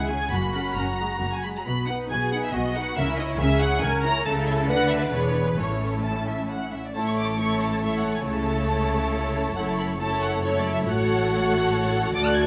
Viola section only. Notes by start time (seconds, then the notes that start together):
0.10 C#4 G#4
0.33 A#3 F#4
0.54 C#4 A#4
0.78 C#4
1.01 G#3
1.22 A#3
1.44 G#3
1.57 F#3
1.67 B3 F#4
1.89 D#4 B4
2.11 B3 F#4
2.33 D#4 B4
2.54 B3 F#4
2.76 D#4 B4
2.97 C#4 A#4
3.18 E4 C#5
3.40 C#4 A#4
3.61 E4 C#5
3.83 C#4 A#4
4.05 E4 C#5
4.26 E4 A4
4.70 D4 B4
5.13 D4 G#4
5.58 C#4 E4
6.95 A3 E4
7.39 A3 E4
7.84 A3 E4
8.27 A3 E4
9.57 A3 E4
10.00 A3 E4
10.44 A3 E4
10.86 A3 F#4
12.15 A3 F#4